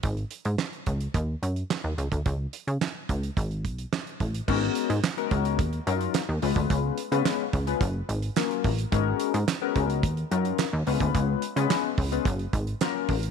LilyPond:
<<
  \new Staff \with { instrumentName = "Analog polysynth" } { \time 4/4 \key gis \dorian \tempo 4 = 108 r1 | r1 | <gis b cis' fis' ais'>8. r8 <gis b cis' fis' ais'>8. r8 <fis cis' dis' eis' ais'>8 r8 <gis b cis' eis' b'>8~ | <gis b cis' eis' b'>8 r16 <gis b cis' eis' b'>8 r8 <gis b cis' eis' b'>16 r4 <fis ais cis' eis' ais'>8 r8 |
<gis b cis' fis' ais'>8. r8 <gis b cis' fis' ais'>8. r8 <fis cis' dis' eis' ais'>8 r8 <gis b cis' eis' b'>8~ | <gis b cis' eis' b'>8 r16 <gis b cis' eis' b'>8 r8 <gis b cis' eis' b'>16 r4 <fis ais cis' eis' ais'>8 r8 | }
  \new Staff \with { instrumentName = "Analog synth bass" } { \clef bass \time 4/4 \key gis \dorian gis,,8 r16 gis,16 r8 cis,8 dis,8 fis,8 r16 dis,16 cis,16 d,16 | cis,8 r16 cis16 r8 cis,8 gis,,8 b,,8 r8 a,,8 | gis,,8 r16 gis,16 r8 cis,8 dis,8 fis,8 r16 dis,16 cis,16 d,16 | cis,8 r16 cis16 r8 cis,8 fis,,8 gis,,8 r8 a,,8 |
gis,,8 r16 gis,16 r8 cis,8 dis,8 fis,8 r16 dis,16 cis,16 d,16 | cis,8 r16 cis16 r8 cis,8 fis,,8 gis,,8 r8 a,,8 | }
  \new DrumStaff \with { instrumentName = "Drums" } \drummode { \time 4/4 <hh bd>16 hh16 hh16 hh16 <hc sn>16 hh16 <hh bd>16 hh16 <hh bd>8 hh16 hh16 <hc sn>8 hh16 <hh bd>16 | <hh bd>8 hh16 hh16 <hc sn>8 <hh bd>16 hh16 <hh bd>16 hh16 <hh bd>16 hh16 <hc sn>16 hh16 <hh bd>16 hh16 | <cymc bd>8 hh16 hh16 <hc hh sn>16 hh16 <hh bd>16 hh16 <hh bd>16 hh16 hh16 hh16 <hc hh sn>8 hho16 <hh bd>16 | <hh bd>8 hh16 hh16 <hc hh sn>8 <hh bd>16 hh16 <hh bd>8 hh16 hh16 <hc hh sn>16 hh16 <hho bd>16 hh16 |
<hh bd>8 hh16 hh16 <hc hh sn>8 <hh bd>16 hh16 <hh bd>16 hh16 hh16 hh16 <hc hh sn>8 hho16 <hh bd>16 | <hh bd>8 hh16 hh16 <hc hh sn>8 <hho bd>16 hh16 <hh bd>16 hh16 <hh bd>16 hh16 <hc hh sn>8 <hho bd>16 hh16 | }
>>